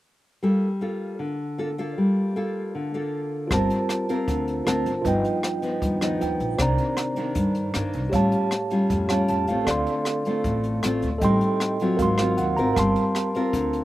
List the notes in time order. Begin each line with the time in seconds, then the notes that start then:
0.43 G3 A#3 F4 A4
0.81 A#3 F4 A4
1.19 D3
1.58 A#3 F4 A4
1.78 A#3 F4 A4
1.98 G3
2.36 A#3 F4 A4
2.75 D3
2.94 A#3 F4 A4
3.48 G1 G3 C4 F4 A#4, kick, cross-stick, closed hi-hat
3.52 F4 A#4 C5 A5
3.70 closed hi-hat
3.89 cross-stick, closed hi-hat
4.09 C4 F4 A#4, closed hi-hat
4.28 D2 D3, kick, closed hi-hat
4.48 closed hi-hat
4.65 D2 C4 F4 A#4 C5 A5, cross-stick, closed hi-hat
4.86 G1, closed hi-hat
5.02 G1 G2 F3 B3 D#4 F4 B4 D#5, kick, closed hi-hat
5.08 G5
5.24 closed hi-hat
5.43 cross-stick, closed hi-hat
5.62 F3 B3 D#4, closed hi-hat
5.82 D#2 G2, kick, closed hi-hat
6.01 F3 B3 D#4, cross-stick, closed hi-hat
6.19 D#2 F4 B4 D#5 G5, closed hi-hat
6.40 A#1, closed hi-hat
6.58 C2 C3 D#3 A#3 D4 C5 D5 A#5, kick, cross-stick, closed hi-hat
6.78 closed hi-hat
6.97 cross-stick, closed hi-hat
7.16 D#3 A#3 D4, closed hi-hat
7.35 G2, kick, closed hi-hat
7.55 closed hi-hat
7.74 G2 D#3 A#3 D4, cross-stick, closed hi-hat
7.93 C2, closed hi-hat
8.09 A1 G4 C#5, kick, closed hi-hat
8.13 A2 G3 C#4 F4 F5 A5
8.32 closed hi-hat
8.51 cross-stick, closed hi-hat
8.70 G3 C#4 F4, closed hi-hat
8.90 F2 A2, kick, closed hi-hat
9.08 G3 C#4 F4 G4 C#5 F5 A5, cross-stick, closed hi-hat
9.28 F2 A5, closed hi-hat
9.47 A1 A3 C4 F4 F5, closed hi-hat
9.65 D2 A4 D5 F5, kick, cross-stick, closed hi-hat
9.69 D3 C6
9.86 closed hi-hat
10.05 cross-stick, closed hi-hat
10.25 A3 C4 F4, closed hi-hat
10.44 A1 A2, kick, closed hi-hat
10.63 closed hi-hat
10.83 A1 A3 C4 F4, cross-stick, closed hi-hat
11.02 D2, closed hi-hat
11.18 A1 A4 D#5, kick, closed hi-hat
11.23 A2 G3 C4 D#4 G5 C6
11.41 closed hi-hat
11.60 cross-stick, closed hi-hat
11.79 F#3 C4 F4, closed hi-hat
11.97 G#1 G#2 F#4 A#4 F5, kick, closed hi-hat
12.03 C6
12.18 F#3 C4 F4 F5, cross-stick, closed hi-hat
12.37 D#2 F#5, closed hi-hat
12.57 G#1 C4 F4 A#4 A#5, closed hi-hat
12.73 G1 A#4 F5, kick, cross-stick, closed hi-hat
12.77 G3 A5 C6
12.96 closed hi-hat
13.15 cross-stick, closed hi-hat
13.34 C4 F4 A#4, closed hi-hat
13.53 D2 D3, kick, closed hi-hat
13.73 closed hi-hat